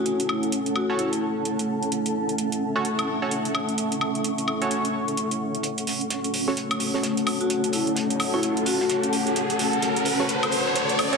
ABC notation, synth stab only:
X:1
M:4/4
L:1/16
Q:"Swing 16ths" 1/4=129
K:F#m
V:1 name="Synth stab"
z6 z [CFAc]2 z6 z | z6 z [CFAc] z3 [CFAc] z4 | z6 z [CFAc]2 z6 z | z6 z [CFAc] z3 [CFAc] z4 |
z6 z [CFAc]2 z6 z | z6 z [CFAc] z6 z [CFAc] |]